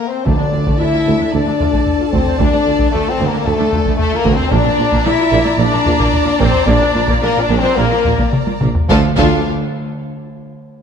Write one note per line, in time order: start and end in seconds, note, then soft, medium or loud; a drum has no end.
0.07 0.26 C4 loud
0.07 0.27 C5 medium
0.24 0.32 D2 loud
0.24 0.32 D2 medium
0.24 0.32 D2 loud
0.24 1.03 D3 loud
0.24 0.31 A3 loud
0.24 0.79 D4 loud
0.24 4.48 A4 medium
0.24 4.47 D5 medium
0.24 0.80 D5 loud
0.24 0.79 D5 loud
0.24 4.48 A5 medium
0.24 taiko medium
0.39 0.45 D2 medium
0.39 0.45 D4 medium
0.53 0.58 D2 medium
0.53 0.59 D2 medium
0.53 0.58 F4 medium
0.66 0.72 D2 loud
0.66 0.72 A3 loud
0.66 taiko loud
0.77 0.85 D2 medium
0.77 0.86 D2 medium
0.77 0.85 D4 medium
0.77 1.31 E4 loud
0.77 1.34 E5 loud
0.93 0.98 D2 medium
0.93 0.99 F4 medium
1.05 1.12 D2 loud
1.05 1.12 D2 medium
1.05 1.11 A3 medium
1.19 1.25 D2 medium
1.19 1.25 D4 medium
1.32 1.38 D2 loud
1.32 1.39 D2 loud
1.32 1.39 A3 medium
1.32 2.12 D4 loud
1.32 2.13 D5 loud
1.32 2.12 D5 loud
1.46 1.51 D2 medium
1.46 1.52 D4 medium
1.59 1.65 D2 medium
1.59 1.66 D2 medium
1.59 1.66 F4 medium
1.59 taiko low medium
1.72 1.78 D2 loud
1.72 1.79 A3 loud
1.72 taiko medium
1.87 taiko low medium
1.99 2.05 D2 medium
1.99 2.06 F4 medium
2.12 2.18 D2 loud
2.12 2.19 D2 loud
2.12 2.19 A3 loud
2.12 2.39 C4 loud
2.12 2.39 C5 loud
2.12 2.39 C5 medium
2.12 taiko medium
2.26 taiko low medium
2.39 2.45 D2 loud
2.39 2.46 D2 loud
2.39 2.45 A3 medium
2.39 2.91 D4 loud
2.39 2.93 D5 loud
2.39 taiko loud
2.53 2.58 D2 medium
2.53 2.59 D4 medium
2.66 2.72 D2 medium
2.66 2.72 F4 medium
2.79 2.85 D2 loud
2.79 2.85 A3 loud
2.79 taiko loud
2.91 2.98 D2 medium
2.91 2.99 D2 medium
2.91 3.09 A3 loud
2.91 2.98 D4 medium
2.91 3.10 A4 loud
2.91 3.11 A4 loud
3.06 3.12 D2 medium
3.06 3.28 C4 loud
3.06 3.11 F4 medium
3.06 3.28 C5 medium
3.11 3.29 C5 loud
3.19 3.25 D2 loud
3.19 3.24 A3 loud
3.27 3.45 A#3 loud
3.27 3.46 A#4 medium
3.27 3.46 A#4 loud
3.33 3.39 D2 medium
3.33 3.38 D4 medium
3.44 3.51 D2 loud
3.44 3.52 D2 loud
3.44 3.96 A3 loud
3.44 3.51 A3 loud
3.44 3.96 A4 loud
3.44 3.99 A4 loud
3.59 3.65 D2 medium
3.59 3.64 D4 medium
3.72 3.78 D2 medium
3.72 3.78 F4 medium
3.72 taiko low medium
3.85 3.92 D2 loud
3.85 3.91 A3 loud
3.85 taiko medium
3.97 4.15 A3 loud
3.97 4.15 A4 loud
3.97 4.17 A4 loud
3.97 taiko low medium
4.12 4.18 D2 medium
4.12 4.34 A#3 loud
4.12 4.18 F4 medium
4.16 4.34 A#4 loud
4.16 4.35 A#4 loud
4.25 4.30 D2 loud
4.25 4.31 D2 loud
4.25 4.31 A3 loud
4.25 taiko loud
4.33 4.52 C4 loud
4.33 4.52 C5 loud
4.33 4.53 C5 loud
4.39 taiko low medium
4.50 4.57 A#1 loud
4.50 4.57 A#2 loud
4.50 4.57 A#3 loud
4.50 5.04 D4 loud
4.50 8.64 D5 loud
4.50 5.05 D5 loud
4.50 5.06 D5 loud
4.50 8.64 A#5 loud
4.50 taiko loud
4.65 4.71 A#2 medium
4.65 4.71 D4 medium
4.65 taiko rim medium
4.78 4.83 A#1 medium
4.78 4.84 A#1 medium
4.78 4.84 A#2 loud
4.78 4.84 F4 medium
4.92 4.97 A#2 loud
4.92 4.97 A#3 loud
4.92 taiko loud
5.05 5.10 A#1 medium
5.05 5.11 A#1 medium
5.05 5.11 A#2 medium
5.05 5.11 D4 loud
5.05 5.59 E4 loud
5.05 5.57 E5 loud
5.05 5.59 E5 loud
5.18 5.24 A#2 loud
5.18 5.25 F4 loud
5.32 5.37 A#1 loud
5.32 5.37 A#2 loud
5.32 5.37 A#3 loud
5.45 5.50 A#2 medium
5.45 5.51 D4 medium
5.58 5.64 A#1 loud
5.58 5.64 A#2 loud
5.58 5.64 A#3 loud
5.58 6.39 D4 loud
5.58 6.38 D5 loud
5.58 6.17 D5 loud
5.72 5.78 A#2 loud
5.72 5.77 D4 medium
5.85 5.91 A#1 medium
5.85 5.92 A#1 loud
5.85 5.91 A#2 loud
5.85 5.91 F4 loud
5.85 taiko low medium
5.99 6.04 A#2 loud
5.99 6.05 A#3 loud
5.99 taiko loud
6.13 taiko low medium
6.25 6.31 A#2 loud
6.25 6.31 F4 loud
6.39 6.45 A#1 loud
6.39 6.46 A#1 loud
6.39 6.45 A#2 loud
6.39 6.45 A#3 loud
6.39 6.67 C4 loud
6.39 6.67 C5 loud
6.39 taiko loud
6.54 taiko low medium
6.66 6.72 A#1 loud
6.66 6.73 A#1 loud
6.66 6.72 A#2 loud
6.66 6.73 A#3 loud
6.66 7.06 D4 loud
6.66 7.22 D5 loud
6.66 taiko loud
6.80 6.86 A#2 loud
6.80 6.87 D4 medium
6.93 7.00 A#1 medium
6.93 7.00 A#1 loud
6.93 6.99 A#2 loud
6.93 7.00 F4 loud
7.07 7.13 A#2 loud
7.07 7.14 A#3 loud
7.07 taiko loud
7.21 7.27 A#1 medium
7.21 7.28 A#1 medium
7.21 7.27 A#2 loud
7.21 7.40 A#3 loud
7.21 7.28 D4 loud
7.21 7.40 A#4 loud
7.35 7.41 A#2 loud
7.35 7.42 F4 medium
7.39 7.59 D4 loud
7.39 7.58 D5 loud
7.49 7.54 A#1 loud
7.49 7.55 A#1 loud
7.49 7.55 A#2 loud
7.49 7.55 A#3 loud
7.58 7.77 C4 loud
7.58 7.76 C5 loud
7.58 7.77 C5 loud
7.63 7.68 A#2 medium
7.63 7.69 D4 medium
7.76 7.83 A#1 loud
7.76 7.82 A#2 loud
7.76 8.32 A#3 loud
7.76 7.84 A#3 loud
7.76 8.32 A#4 loud
7.76 8.33 A#4 loud
7.90 7.96 A#2 medium
7.90 7.97 D4 medium
7.90 taiko rim soft
8.05 8.11 A#1 medium
8.05 8.10 A#2 medium
8.05 8.11 F4 medium
8.05 taiko low medium
8.18 8.24 A#2 loud
8.18 8.25 A#3 loud
8.18 taiko loud
8.33 taiko mid loud
8.46 8.52 A#2 medium
8.46 8.53 F4 medium
8.46 taiko high loud
8.61 8.67 A#1 loud
8.61 8.66 A#2 loud
8.61 8.67 A#3 medium
8.61 taiko mid loud
8.75 taiko low loud
8.89 9.05 D2 loud
8.89 9.02 D2 loud
8.89 9.05 D3 loud
8.89 9.12 F3 loud
8.89 9.05 D4 loud
8.89 9.05 F4 loud
8.89 9.05 A4 loud
8.89 9.05 F5 loud
8.89 9.06 F5 loud
8.89 9.05 A5 loud
8.89 taiko loud
9.16 9.49 D2 loud
9.16 9.42 D2 loud
9.16 9.43 D3 loud
9.16 9.49 D4 loud
9.16 9.49 F4 loud
9.16 9.48 A4 loud
9.16 9.48 F5 loud
9.16 9.49 F5 loud
9.16 9.48 A5 loud
9.16 taiko loud